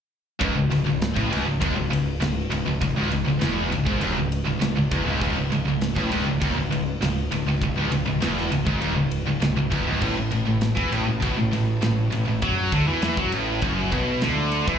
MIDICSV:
0, 0, Header, 1, 4, 480
1, 0, Start_track
1, 0, Tempo, 601202
1, 324, Time_signature, 4, 2, 24, 8
1, 11806, End_track
2, 0, Start_track
2, 0, Title_t, "Distorted electric guitar"
2, 0, Program_c, 0, 30
2, 317, Note_on_c, 0, 37, 107
2, 427, Note_off_c, 0, 37, 0
2, 437, Note_on_c, 0, 37, 73
2, 549, Note_off_c, 0, 37, 0
2, 559, Note_on_c, 0, 37, 73
2, 665, Note_off_c, 0, 37, 0
2, 675, Note_on_c, 0, 37, 83
2, 871, Note_off_c, 0, 37, 0
2, 911, Note_on_c, 0, 45, 100
2, 1030, Note_off_c, 0, 45, 0
2, 1041, Note_on_c, 0, 37, 96
2, 1153, Note_off_c, 0, 37, 0
2, 1162, Note_on_c, 0, 37, 76
2, 1276, Note_off_c, 0, 37, 0
2, 1280, Note_on_c, 0, 39, 103
2, 1394, Note_off_c, 0, 39, 0
2, 1401, Note_on_c, 0, 37, 79
2, 1511, Note_off_c, 0, 37, 0
2, 1520, Note_on_c, 0, 37, 82
2, 1714, Note_off_c, 0, 37, 0
2, 1761, Note_on_c, 0, 37, 79
2, 1954, Note_off_c, 0, 37, 0
2, 2001, Note_on_c, 0, 37, 64
2, 2109, Note_off_c, 0, 37, 0
2, 2118, Note_on_c, 0, 37, 66
2, 2241, Note_off_c, 0, 37, 0
2, 2252, Note_on_c, 0, 37, 79
2, 2358, Note_off_c, 0, 37, 0
2, 2367, Note_on_c, 0, 37, 111
2, 2468, Note_off_c, 0, 37, 0
2, 2477, Note_on_c, 0, 37, 77
2, 2590, Note_off_c, 0, 37, 0
2, 2600, Note_on_c, 0, 37, 83
2, 2721, Note_off_c, 0, 37, 0
2, 2725, Note_on_c, 0, 40, 120
2, 2957, Note_off_c, 0, 40, 0
2, 2964, Note_on_c, 0, 37, 79
2, 3083, Note_off_c, 0, 37, 0
2, 3091, Note_on_c, 0, 44, 104
2, 3198, Note_off_c, 0, 44, 0
2, 3202, Note_on_c, 0, 39, 105
2, 3315, Note_off_c, 0, 39, 0
2, 3324, Note_on_c, 0, 37, 82
2, 3516, Note_off_c, 0, 37, 0
2, 3563, Note_on_c, 0, 37, 82
2, 3677, Note_off_c, 0, 37, 0
2, 3686, Note_on_c, 0, 37, 81
2, 3797, Note_off_c, 0, 37, 0
2, 3807, Note_on_c, 0, 37, 65
2, 3925, Note_off_c, 0, 37, 0
2, 3934, Note_on_c, 0, 40, 92
2, 4041, Note_off_c, 0, 40, 0
2, 4051, Note_on_c, 0, 37, 86
2, 4160, Note_off_c, 0, 37, 0
2, 4174, Note_on_c, 0, 37, 113
2, 4281, Note_off_c, 0, 37, 0
2, 4294, Note_on_c, 0, 37, 78
2, 4400, Note_off_c, 0, 37, 0
2, 4410, Note_on_c, 0, 37, 71
2, 4523, Note_off_c, 0, 37, 0
2, 4533, Note_on_c, 0, 37, 76
2, 4720, Note_off_c, 0, 37, 0
2, 4773, Note_on_c, 0, 45, 104
2, 4881, Note_off_c, 0, 45, 0
2, 4890, Note_on_c, 0, 37, 108
2, 4996, Note_off_c, 0, 37, 0
2, 5005, Note_on_c, 0, 37, 78
2, 5119, Note_off_c, 0, 37, 0
2, 5122, Note_on_c, 0, 39, 110
2, 5235, Note_off_c, 0, 39, 0
2, 5241, Note_on_c, 0, 37, 78
2, 5346, Note_off_c, 0, 37, 0
2, 5356, Note_on_c, 0, 37, 88
2, 5551, Note_off_c, 0, 37, 0
2, 5612, Note_on_c, 0, 37, 86
2, 5799, Note_off_c, 0, 37, 0
2, 5840, Note_on_c, 0, 37, 68
2, 5949, Note_off_c, 0, 37, 0
2, 5959, Note_on_c, 0, 37, 73
2, 6067, Note_off_c, 0, 37, 0
2, 6077, Note_on_c, 0, 37, 78
2, 6184, Note_off_c, 0, 37, 0
2, 6194, Note_on_c, 0, 37, 111
2, 6299, Note_off_c, 0, 37, 0
2, 6309, Note_on_c, 0, 37, 80
2, 6420, Note_off_c, 0, 37, 0
2, 6430, Note_on_c, 0, 37, 81
2, 6547, Note_off_c, 0, 37, 0
2, 6551, Note_on_c, 0, 40, 109
2, 6788, Note_off_c, 0, 40, 0
2, 6791, Note_on_c, 0, 37, 78
2, 6904, Note_off_c, 0, 37, 0
2, 6907, Note_on_c, 0, 44, 112
2, 7027, Note_off_c, 0, 44, 0
2, 7030, Note_on_c, 0, 39, 110
2, 7142, Note_off_c, 0, 39, 0
2, 7146, Note_on_c, 0, 37, 73
2, 7346, Note_off_c, 0, 37, 0
2, 7394, Note_on_c, 0, 37, 75
2, 7494, Note_off_c, 0, 37, 0
2, 7504, Note_on_c, 0, 37, 81
2, 7622, Note_off_c, 0, 37, 0
2, 7632, Note_on_c, 0, 37, 81
2, 7742, Note_off_c, 0, 37, 0
2, 7745, Note_on_c, 0, 40, 86
2, 7867, Note_off_c, 0, 40, 0
2, 7872, Note_on_c, 0, 37, 91
2, 7984, Note_off_c, 0, 37, 0
2, 7987, Note_on_c, 0, 45, 118
2, 8105, Note_off_c, 0, 45, 0
2, 8115, Note_on_c, 0, 45, 77
2, 8226, Note_off_c, 0, 45, 0
2, 8236, Note_on_c, 0, 45, 81
2, 8349, Note_off_c, 0, 45, 0
2, 8358, Note_on_c, 0, 45, 79
2, 8552, Note_off_c, 0, 45, 0
2, 8593, Note_on_c, 0, 52, 106
2, 8711, Note_off_c, 0, 52, 0
2, 8714, Note_on_c, 0, 45, 110
2, 8826, Note_off_c, 0, 45, 0
2, 8836, Note_on_c, 0, 45, 70
2, 8954, Note_off_c, 0, 45, 0
2, 8957, Note_on_c, 0, 47, 111
2, 9072, Note_off_c, 0, 47, 0
2, 9087, Note_on_c, 0, 45, 78
2, 9193, Note_off_c, 0, 45, 0
2, 9203, Note_on_c, 0, 45, 88
2, 9395, Note_off_c, 0, 45, 0
2, 9442, Note_on_c, 0, 45, 76
2, 9634, Note_off_c, 0, 45, 0
2, 9684, Note_on_c, 0, 45, 75
2, 9790, Note_off_c, 0, 45, 0
2, 9799, Note_on_c, 0, 45, 71
2, 9920, Note_on_c, 0, 54, 117
2, 9921, Note_off_c, 0, 45, 0
2, 10154, Note_off_c, 0, 54, 0
2, 10161, Note_on_c, 0, 50, 106
2, 10274, Note_off_c, 0, 50, 0
2, 10283, Note_on_c, 0, 52, 104
2, 10390, Note_off_c, 0, 52, 0
2, 10399, Note_on_c, 0, 52, 125
2, 10513, Note_off_c, 0, 52, 0
2, 10521, Note_on_c, 0, 54, 107
2, 10634, Note_off_c, 0, 54, 0
2, 10638, Note_on_c, 0, 45, 97
2, 10873, Note_off_c, 0, 45, 0
2, 10885, Note_on_c, 0, 42, 117
2, 11116, Note_off_c, 0, 42, 0
2, 11122, Note_on_c, 0, 47, 117
2, 11355, Note_off_c, 0, 47, 0
2, 11356, Note_on_c, 0, 50, 116
2, 11712, Note_off_c, 0, 50, 0
2, 11715, Note_on_c, 0, 52, 102
2, 11806, Note_off_c, 0, 52, 0
2, 11806, End_track
3, 0, Start_track
3, 0, Title_t, "Picked electric bass"
3, 0, Program_c, 1, 34
3, 328, Note_on_c, 1, 25, 106
3, 438, Note_off_c, 1, 25, 0
3, 457, Note_on_c, 1, 25, 79
3, 562, Note_off_c, 1, 25, 0
3, 574, Note_on_c, 1, 25, 82
3, 681, Note_off_c, 1, 25, 0
3, 694, Note_on_c, 1, 25, 84
3, 912, Note_off_c, 1, 25, 0
3, 932, Note_on_c, 1, 33, 99
3, 1040, Note_off_c, 1, 33, 0
3, 1049, Note_on_c, 1, 25, 88
3, 1158, Note_off_c, 1, 25, 0
3, 1169, Note_on_c, 1, 25, 97
3, 1278, Note_off_c, 1, 25, 0
3, 1291, Note_on_c, 1, 27, 107
3, 1399, Note_off_c, 1, 27, 0
3, 1405, Note_on_c, 1, 25, 77
3, 1516, Note_off_c, 1, 25, 0
3, 1522, Note_on_c, 1, 25, 64
3, 1746, Note_off_c, 1, 25, 0
3, 1770, Note_on_c, 1, 25, 89
3, 1990, Note_off_c, 1, 25, 0
3, 2012, Note_on_c, 1, 25, 68
3, 2120, Note_off_c, 1, 25, 0
3, 2130, Note_on_c, 1, 25, 82
3, 2238, Note_off_c, 1, 25, 0
3, 2252, Note_on_c, 1, 25, 85
3, 2359, Note_off_c, 1, 25, 0
3, 2373, Note_on_c, 1, 25, 85
3, 2480, Note_off_c, 1, 25, 0
3, 2499, Note_on_c, 1, 25, 81
3, 2603, Note_off_c, 1, 25, 0
3, 2615, Note_on_c, 1, 25, 91
3, 2721, Note_off_c, 1, 25, 0
3, 2734, Note_on_c, 1, 28, 87
3, 2952, Note_off_c, 1, 28, 0
3, 2977, Note_on_c, 1, 25, 79
3, 3082, Note_off_c, 1, 25, 0
3, 3091, Note_on_c, 1, 32, 104
3, 3198, Note_off_c, 1, 32, 0
3, 3212, Note_on_c, 1, 27, 102
3, 3319, Note_off_c, 1, 27, 0
3, 3331, Note_on_c, 1, 25, 84
3, 3551, Note_off_c, 1, 25, 0
3, 3574, Note_on_c, 1, 25, 75
3, 3680, Note_off_c, 1, 25, 0
3, 3693, Note_on_c, 1, 25, 84
3, 3800, Note_off_c, 1, 25, 0
3, 3809, Note_on_c, 1, 25, 81
3, 3918, Note_off_c, 1, 25, 0
3, 3926, Note_on_c, 1, 28, 87
3, 4036, Note_off_c, 1, 28, 0
3, 4043, Note_on_c, 1, 25, 89
3, 4155, Note_off_c, 1, 25, 0
3, 4167, Note_on_c, 1, 25, 97
3, 4272, Note_off_c, 1, 25, 0
3, 4277, Note_on_c, 1, 25, 81
3, 4391, Note_off_c, 1, 25, 0
3, 4398, Note_on_c, 1, 25, 79
3, 4512, Note_off_c, 1, 25, 0
3, 4516, Note_on_c, 1, 25, 88
3, 4742, Note_off_c, 1, 25, 0
3, 4764, Note_on_c, 1, 33, 104
3, 4873, Note_off_c, 1, 33, 0
3, 4878, Note_on_c, 1, 25, 93
3, 4992, Note_off_c, 1, 25, 0
3, 4999, Note_on_c, 1, 25, 96
3, 5112, Note_off_c, 1, 25, 0
3, 5123, Note_on_c, 1, 27, 100
3, 5230, Note_off_c, 1, 27, 0
3, 5235, Note_on_c, 1, 25, 75
3, 5350, Note_off_c, 1, 25, 0
3, 5354, Note_on_c, 1, 25, 74
3, 5581, Note_off_c, 1, 25, 0
3, 5597, Note_on_c, 1, 25, 97
3, 5823, Note_off_c, 1, 25, 0
3, 5840, Note_on_c, 1, 25, 78
3, 5953, Note_off_c, 1, 25, 0
3, 5965, Note_on_c, 1, 25, 76
3, 6076, Note_off_c, 1, 25, 0
3, 6082, Note_on_c, 1, 25, 94
3, 6194, Note_off_c, 1, 25, 0
3, 6202, Note_on_c, 1, 25, 88
3, 6314, Note_off_c, 1, 25, 0
3, 6326, Note_on_c, 1, 25, 75
3, 6436, Note_off_c, 1, 25, 0
3, 6446, Note_on_c, 1, 25, 91
3, 6556, Note_off_c, 1, 25, 0
3, 6566, Note_on_c, 1, 28, 94
3, 6788, Note_off_c, 1, 28, 0
3, 6803, Note_on_c, 1, 25, 81
3, 6915, Note_off_c, 1, 25, 0
3, 6921, Note_on_c, 1, 32, 98
3, 7033, Note_off_c, 1, 32, 0
3, 7048, Note_on_c, 1, 27, 105
3, 7157, Note_off_c, 1, 27, 0
3, 7168, Note_on_c, 1, 25, 78
3, 7389, Note_off_c, 1, 25, 0
3, 7404, Note_on_c, 1, 25, 84
3, 7515, Note_off_c, 1, 25, 0
3, 7523, Note_on_c, 1, 25, 87
3, 7634, Note_off_c, 1, 25, 0
3, 7650, Note_on_c, 1, 25, 72
3, 7753, Note_off_c, 1, 25, 0
3, 7757, Note_on_c, 1, 28, 81
3, 7872, Note_off_c, 1, 28, 0
3, 7884, Note_on_c, 1, 25, 87
3, 7995, Note_off_c, 1, 25, 0
3, 8000, Note_on_c, 1, 33, 105
3, 8113, Note_off_c, 1, 33, 0
3, 8131, Note_on_c, 1, 33, 77
3, 8239, Note_off_c, 1, 33, 0
3, 8250, Note_on_c, 1, 33, 74
3, 8358, Note_off_c, 1, 33, 0
3, 8365, Note_on_c, 1, 33, 79
3, 8587, Note_off_c, 1, 33, 0
3, 8602, Note_on_c, 1, 40, 98
3, 8714, Note_off_c, 1, 40, 0
3, 8726, Note_on_c, 1, 33, 83
3, 8836, Note_off_c, 1, 33, 0
3, 8850, Note_on_c, 1, 33, 91
3, 8958, Note_off_c, 1, 33, 0
3, 8964, Note_on_c, 1, 35, 94
3, 9075, Note_off_c, 1, 35, 0
3, 9085, Note_on_c, 1, 33, 83
3, 9195, Note_off_c, 1, 33, 0
3, 9206, Note_on_c, 1, 33, 74
3, 9427, Note_off_c, 1, 33, 0
3, 9446, Note_on_c, 1, 33, 83
3, 9668, Note_off_c, 1, 33, 0
3, 9685, Note_on_c, 1, 33, 72
3, 9795, Note_off_c, 1, 33, 0
3, 9804, Note_on_c, 1, 33, 89
3, 9915, Note_off_c, 1, 33, 0
3, 9921, Note_on_c, 1, 42, 100
3, 10145, Note_off_c, 1, 42, 0
3, 10162, Note_on_c, 1, 38, 92
3, 10274, Note_off_c, 1, 38, 0
3, 10282, Note_on_c, 1, 40, 101
3, 10394, Note_off_c, 1, 40, 0
3, 10401, Note_on_c, 1, 40, 99
3, 10513, Note_off_c, 1, 40, 0
3, 10520, Note_on_c, 1, 42, 102
3, 10633, Note_off_c, 1, 42, 0
3, 10638, Note_on_c, 1, 33, 94
3, 10863, Note_off_c, 1, 33, 0
3, 10880, Note_on_c, 1, 30, 88
3, 11104, Note_off_c, 1, 30, 0
3, 11118, Note_on_c, 1, 35, 90
3, 11343, Note_off_c, 1, 35, 0
3, 11366, Note_on_c, 1, 38, 105
3, 11699, Note_off_c, 1, 38, 0
3, 11716, Note_on_c, 1, 40, 93
3, 11806, Note_off_c, 1, 40, 0
3, 11806, End_track
4, 0, Start_track
4, 0, Title_t, "Drums"
4, 328, Note_on_c, 9, 36, 94
4, 331, Note_on_c, 9, 51, 89
4, 407, Note_off_c, 9, 36, 0
4, 411, Note_off_c, 9, 51, 0
4, 571, Note_on_c, 9, 51, 77
4, 651, Note_off_c, 9, 51, 0
4, 811, Note_on_c, 9, 51, 99
4, 817, Note_on_c, 9, 38, 127
4, 891, Note_off_c, 9, 51, 0
4, 897, Note_off_c, 9, 38, 0
4, 930, Note_on_c, 9, 36, 94
4, 943, Note_on_c, 9, 38, 30
4, 1010, Note_off_c, 9, 36, 0
4, 1023, Note_off_c, 9, 38, 0
4, 1058, Note_on_c, 9, 51, 79
4, 1138, Note_off_c, 9, 51, 0
4, 1291, Note_on_c, 9, 36, 106
4, 1295, Note_on_c, 9, 51, 107
4, 1371, Note_off_c, 9, 36, 0
4, 1375, Note_off_c, 9, 51, 0
4, 1542, Note_on_c, 9, 51, 87
4, 1622, Note_off_c, 9, 51, 0
4, 1770, Note_on_c, 9, 51, 102
4, 1776, Note_on_c, 9, 38, 111
4, 1850, Note_off_c, 9, 51, 0
4, 1856, Note_off_c, 9, 38, 0
4, 2008, Note_on_c, 9, 51, 91
4, 2088, Note_off_c, 9, 51, 0
4, 2248, Note_on_c, 9, 36, 91
4, 2248, Note_on_c, 9, 51, 103
4, 2328, Note_off_c, 9, 36, 0
4, 2328, Note_off_c, 9, 51, 0
4, 2487, Note_on_c, 9, 51, 68
4, 2566, Note_off_c, 9, 51, 0
4, 2724, Note_on_c, 9, 51, 94
4, 2729, Note_on_c, 9, 38, 115
4, 2803, Note_off_c, 9, 51, 0
4, 2809, Note_off_c, 9, 38, 0
4, 2971, Note_on_c, 9, 51, 75
4, 3051, Note_off_c, 9, 51, 0
4, 3087, Note_on_c, 9, 36, 121
4, 3167, Note_off_c, 9, 36, 0
4, 3202, Note_on_c, 9, 51, 99
4, 3282, Note_off_c, 9, 51, 0
4, 3449, Note_on_c, 9, 51, 76
4, 3528, Note_off_c, 9, 51, 0
4, 3684, Note_on_c, 9, 51, 109
4, 3690, Note_on_c, 9, 38, 110
4, 3764, Note_off_c, 9, 51, 0
4, 3770, Note_off_c, 9, 38, 0
4, 3925, Note_on_c, 9, 36, 112
4, 3925, Note_on_c, 9, 51, 75
4, 4004, Note_off_c, 9, 36, 0
4, 4005, Note_off_c, 9, 51, 0
4, 4163, Note_on_c, 9, 49, 88
4, 4164, Note_on_c, 9, 36, 94
4, 4243, Note_off_c, 9, 49, 0
4, 4244, Note_off_c, 9, 36, 0
4, 4406, Note_on_c, 9, 51, 69
4, 4486, Note_off_c, 9, 51, 0
4, 4641, Note_on_c, 9, 51, 104
4, 4647, Note_on_c, 9, 38, 114
4, 4721, Note_off_c, 9, 51, 0
4, 4727, Note_off_c, 9, 38, 0
4, 4762, Note_on_c, 9, 36, 89
4, 4769, Note_on_c, 9, 38, 32
4, 4842, Note_off_c, 9, 36, 0
4, 4849, Note_off_c, 9, 38, 0
4, 4883, Note_on_c, 9, 51, 80
4, 4963, Note_off_c, 9, 51, 0
4, 5123, Note_on_c, 9, 36, 106
4, 5125, Note_on_c, 9, 51, 103
4, 5203, Note_off_c, 9, 36, 0
4, 5205, Note_off_c, 9, 51, 0
4, 5368, Note_on_c, 9, 51, 79
4, 5447, Note_off_c, 9, 51, 0
4, 5605, Note_on_c, 9, 51, 107
4, 5611, Note_on_c, 9, 38, 109
4, 5685, Note_off_c, 9, 51, 0
4, 5691, Note_off_c, 9, 38, 0
4, 5842, Note_on_c, 9, 51, 82
4, 5922, Note_off_c, 9, 51, 0
4, 6081, Note_on_c, 9, 36, 82
4, 6086, Note_on_c, 9, 51, 97
4, 6160, Note_off_c, 9, 36, 0
4, 6165, Note_off_c, 9, 51, 0
4, 6321, Note_on_c, 9, 51, 81
4, 6401, Note_off_c, 9, 51, 0
4, 6561, Note_on_c, 9, 51, 114
4, 6566, Note_on_c, 9, 38, 122
4, 6641, Note_off_c, 9, 51, 0
4, 6646, Note_off_c, 9, 38, 0
4, 6687, Note_on_c, 9, 38, 30
4, 6767, Note_off_c, 9, 38, 0
4, 6801, Note_on_c, 9, 51, 79
4, 6881, Note_off_c, 9, 51, 0
4, 6919, Note_on_c, 9, 36, 110
4, 6999, Note_off_c, 9, 36, 0
4, 7038, Note_on_c, 9, 51, 104
4, 7118, Note_off_c, 9, 51, 0
4, 7276, Note_on_c, 9, 51, 78
4, 7356, Note_off_c, 9, 51, 0
4, 7519, Note_on_c, 9, 51, 97
4, 7525, Note_on_c, 9, 38, 114
4, 7599, Note_off_c, 9, 51, 0
4, 7604, Note_off_c, 9, 38, 0
4, 7758, Note_on_c, 9, 36, 116
4, 7760, Note_on_c, 9, 51, 75
4, 7838, Note_off_c, 9, 36, 0
4, 7840, Note_off_c, 9, 51, 0
4, 7997, Note_on_c, 9, 49, 90
4, 7998, Note_on_c, 9, 36, 95
4, 8077, Note_off_c, 9, 49, 0
4, 8078, Note_off_c, 9, 36, 0
4, 8235, Note_on_c, 9, 51, 71
4, 8315, Note_off_c, 9, 51, 0
4, 8472, Note_on_c, 9, 51, 96
4, 8478, Note_on_c, 9, 38, 115
4, 8552, Note_off_c, 9, 51, 0
4, 8558, Note_off_c, 9, 38, 0
4, 8599, Note_on_c, 9, 36, 96
4, 8601, Note_on_c, 9, 38, 32
4, 8679, Note_off_c, 9, 36, 0
4, 8681, Note_off_c, 9, 38, 0
4, 8721, Note_on_c, 9, 51, 79
4, 8801, Note_off_c, 9, 51, 0
4, 8962, Note_on_c, 9, 36, 102
4, 8964, Note_on_c, 9, 51, 98
4, 9041, Note_off_c, 9, 36, 0
4, 9044, Note_off_c, 9, 51, 0
4, 9205, Note_on_c, 9, 51, 82
4, 9285, Note_off_c, 9, 51, 0
4, 9438, Note_on_c, 9, 51, 99
4, 9444, Note_on_c, 9, 38, 111
4, 9518, Note_off_c, 9, 51, 0
4, 9524, Note_off_c, 9, 38, 0
4, 9678, Note_on_c, 9, 51, 77
4, 9758, Note_off_c, 9, 51, 0
4, 9914, Note_on_c, 9, 51, 94
4, 9919, Note_on_c, 9, 36, 95
4, 9994, Note_off_c, 9, 51, 0
4, 9999, Note_off_c, 9, 36, 0
4, 10154, Note_on_c, 9, 51, 76
4, 10159, Note_on_c, 9, 36, 118
4, 10234, Note_off_c, 9, 51, 0
4, 10238, Note_off_c, 9, 36, 0
4, 10396, Note_on_c, 9, 51, 104
4, 10401, Note_on_c, 9, 38, 110
4, 10475, Note_off_c, 9, 51, 0
4, 10481, Note_off_c, 9, 38, 0
4, 10517, Note_on_c, 9, 36, 95
4, 10597, Note_off_c, 9, 36, 0
4, 10637, Note_on_c, 9, 51, 78
4, 10717, Note_off_c, 9, 51, 0
4, 10870, Note_on_c, 9, 51, 101
4, 10877, Note_on_c, 9, 36, 106
4, 10950, Note_off_c, 9, 51, 0
4, 10957, Note_off_c, 9, 36, 0
4, 11112, Note_on_c, 9, 51, 70
4, 11116, Note_on_c, 9, 36, 103
4, 11192, Note_off_c, 9, 51, 0
4, 11196, Note_off_c, 9, 36, 0
4, 11348, Note_on_c, 9, 51, 89
4, 11354, Note_on_c, 9, 38, 104
4, 11428, Note_off_c, 9, 51, 0
4, 11434, Note_off_c, 9, 38, 0
4, 11590, Note_on_c, 9, 51, 72
4, 11669, Note_off_c, 9, 51, 0
4, 11718, Note_on_c, 9, 36, 114
4, 11798, Note_off_c, 9, 36, 0
4, 11806, End_track
0, 0, End_of_file